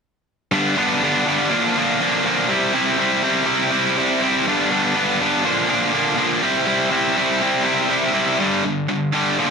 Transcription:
distorted electric guitar
0.51 G2 D3 G3 B3 D4
0.76 G2 D3 G3 B3 D4
1.02 G2 D3 G3 B3 D4
1.26 G2 D3 G3 B3 D4
1.50 A#2 D3 F3 A#3 D4
1.76 A#2 D3 F3 A#3 D4
2.00 A#2 D3 F3 A#3 D4
2.25 A#2 D3 F3 A#3 D4
2.49 C3 G3 C4 E4
2.73 C3 G3 C4 E4
2.98 C3 G3 C4 E4
3.22 C3 G3 C4 E4
3.46 C3 G3 C4 E4
3.70 C3 G3 C4 E4
3.96 C3 G3 C4 E4
4.21 C3 G3 C4 E4
4.47 G2 D3 G3 B3 D4
4.71 G2 D3 G3 B3 D4
4.95 G2 D3 G3 B3 D4
5.21 G2 D3 G3 B3 D4
5.43 A#2 D3 F3 A#3 D4
5.67 A#2 D3 F3 A#3 D4
5.92 A#2 D3 F3 A#3 D4
6.15 A#2 D3 F3 A#3 D4
6.42 C3 G3 C4 E4
6.66 C3 G3 C4 E4
6.90 C3 G3 C4 E4
7.16 C3 G3 C4 E4
7.40 C3 G3 C4 E4
7.63 C3 G3 C4 E4
7.89 C3 G3 C4 E4
8.13 C3 G3 C4 E4
8.38 G2 D3 G3
8.64 G2 D3
8.89 G2 D3
9.13 G2 D3 G3
9.39 A#2 D3 F3

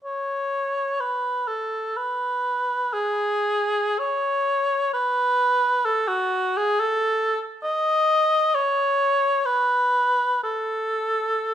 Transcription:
cor anglais
0.04 C#5
1.00 B4
1.48 A4
1.97 B4
2.93 G#4
3.99 C#5
4.93 B4
5.85 A4
6.08 F#4
6.57 G#4
6.80 A4
7.64 D#5
8.55 C#5
9.46 B4
10.43 A4

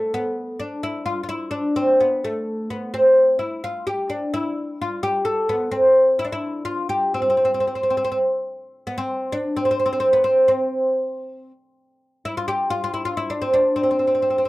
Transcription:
oud
Already playing: A3
0.14 B3
0.59 D4
0.83 E4
1.06 F4
1.23 F4
1.29 E4
1.51 D4
1.76 C4
2.00 B3
2.24 A3
2.70 B3
2.94 C4
3.39 E4
3.64 F4
3.87 G4
4.10 D4
4.34 E4
4.82 F4
5.03 G4
5.25 A4
5.49 B3
5.71 C4
6.19 E4
6.25 D4
6.32 E4
6.65 F4
6.89 G4
7.14 C4
7.22 C4
7.30 C4
7.37 C4
7.45 C4
7.54 C4
7.60 C4
7.67 C4
7.75 C4
7.83 C4
7.90 C4
7.97 C4
8.05 C4
8.12 C4
8.87 B3
8.98 C4
9.32 D4
9.56 C4
9.65 C4
9.71 C4
9.80 C4
9.86 C4
9.93 C4
10.00 C4
10.13 B3
10.24 C4
10.48 C4
12.25 E4
12.37 F4
12.48 G4
12.70 F4
12.84 F4
12.94 E4
13.05 F4
13.17 E4
13.30 D4
13.42 C4
13.54 D4
13.76 C4
13.83 C4
13.91 C4
13.99 C4
14.07 C4
14.15 C4
14.22 C4
14.30 C4
14.38 C4
14.45 C4

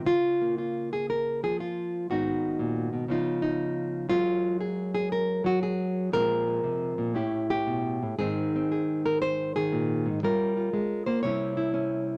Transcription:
nylon-string guitar
0.06 C#3 F4
0.41 A#3
0.58 F4
0.93 G#4
1.10 A#4
1.43 F3 G#4
1.60 F4
2.10 G#2 D#3 B3 D#4 F#4
2.59 A#2
2.93 B2
3.08 C#3 F3 B3 D#4 F4
3.42 D#4
4.09 F#2 F#3 G#3 C#4 F4
4.61 G#4
4.95 G#4
5.12 A#4
5.44 F#3 F#4
5.63 G#4
6.12 A#2 F3 G#3 C4 A#4
6.48 G#3
6.64 C3
6.98 A#2
7.14 A2 C#4 E4 G4
7.50 G4
7.67 B2
8.03 A2
8.18 G#2 D#3 C4 D#4 G#4
8.56 C4
8.72 G#4
9.06 A#4
9.22 C5
9.56 D#3 G#4
9.72 A#2
10.06 G#2
10.23 G3 C#4 F4 A#4
10.57 F4
10.73 G#3
11.06 A#3 C5
11.23 C3 G3 C#4 E4 C#5
11.57 E4
11.74 C#4

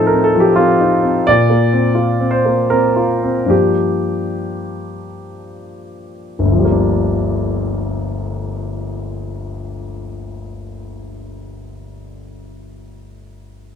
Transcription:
grand piano
Already playing: A2 F3 C4 D#4 A4 C5
0.07 A#4
0.13 C4
0.24 A4
0.35 F3
0.40 G4
0.56 C4 F4
0.80 D#4
1.03 C4
1.27 A#2 D5
1.50 A#3
1.73 C4
1.95 F4
2.20 C4
2.31 C5
2.45 A#3
2.70 C4 A#4
2.96 F4
3.23 C4
3.46 G2 F3 A#3 D4 G4
6.39 G1
6.45 D2
6.52 F3
6.59 G3
6.65 A#3
6.72 D4

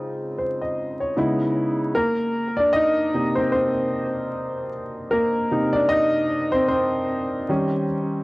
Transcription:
grand piano
Already playing: C#3 G#3 C4 D#4 F4
0.38 C5
0.62 D#5
1.00 C#5
1.17 C#3 G#3 B3 D#4 E4
1.95 A#3 A#4
2.57 D4 D5
2.73 D#4 D#5
3.14 C3 A#3 D#4
3.35 C4 C5
3.52 C4 C5
5.11 A#3 A#4
5.51 C3 A#3 D#4
5.73 D4 D5
5.89 D#4 D#5
6.52 C4 C5
6.68 C4 C5
7.49 D#3 G3 C#4

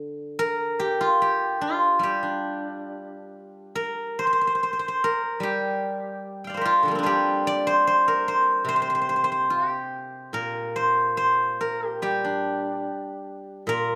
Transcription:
guzheng
Already playing: D3 D5
0.39 A#4
0.79 G4
1.01 F4
1.22 G4
1.61 F4
1.99 G3
2.03 G4
2.23 D4
3.75 A#4
4.19 C5
4.27 C5
4.33 C5
4.41 C5
4.47 C5
4.55 C5
4.63 C5
4.73 C5
4.79 C5
4.88 C5
5.04 A#4
5.40 G3 G4
6.44 F5 G5
6.50 D5
6.54 A#4 C5
6.61 G4
6.65 F4
6.83 D3 F3
6.88 G3 A#3
6.95 C4 D4
7.03 G3 F4 G4
7.47 D5
7.67 C5
7.87 C5
8.08 A#4
8.28 C5
8.65 C3 C5
8.76 C5
8.82 C5
8.90 C5
8.95 C5
9.01 C5
9.09 C5
9.16 C5
9.24 C5
9.32 C5
9.50 F4
9.68 G4
10.33 A#2 A#4
10.76 C5
11.17 C5
11.61 A#4
11.88 G4
12.02 G3 G4
12.24 D4
13.67 A#2 A#4

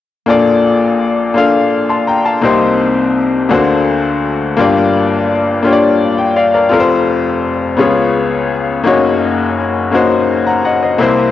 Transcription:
upright piano
0.26 A#1 A#2 A#3 D4 F4 A4 D5
1.34 A#3 D4 F4 A4 F5
1.89 A5 C6
2.07 G5 A#5
2.26 F5 A5
2.42 C2 C3 A#3 C4 D#4 G4 C5
3.49 D2 D3 A#3 D4 F#4 A4
3.53 C5
4.57 G1 G2 A#3 D4 F4 G4 D5
5.63 A#3 D4 F4 G4 C#5
5.73 D5
6.18 G5
6.36 D5 F5
6.54 A#4 D5
6.69 F1 F2 F4 A4 A#4
6.80 C5
7.77 C#2 C#3 B3 C#4 F4 G#4 C#5
8.83 F#1 F#2 A#3 C#4 D#4 F#4 C#5
9.91 A#3 C#4 D#4 F#4 C5
10.47 F#5 A#5
10.65 D#5 F#5
10.83 C5 D#5
10.98 C2 C3 A#3 C4 E4 G4 C5

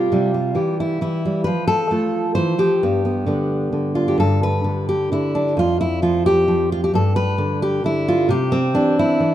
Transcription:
steel-string acoustic guitar
Already playing: C4 F4 G4
0.12 C3 G3
0.34 G3
0.55 E3 G4
0.80 E4
1.01 E3 E4
1.25 G3
1.44 F3 B4
1.68 A4
1.91 A3 F4
2.35 E3 C5
2.58 F3 G4
2.83 G2 B3
3.05 B3
3.26 D3 B3
3.73 D3
3.95 D4 F4
4.08 G4
4.18 G2 A4
4.43 B4
4.64 D3
4.89 G4
5.12 D3 E4
5.35 D4
5.57 F2 F4
5.81 E4
6.02 F3 F4
6.26 G4
6.48 F3
6.72 F4
6.84 G4
6.94 G2 A4
7.16 B4
7.38 D3
7.62 G4
7.84 D3 E4
8.08 F4
8.29 C3 G4
8.52 C4
8.74 E3 D4
8.99 E4
9.20 E3

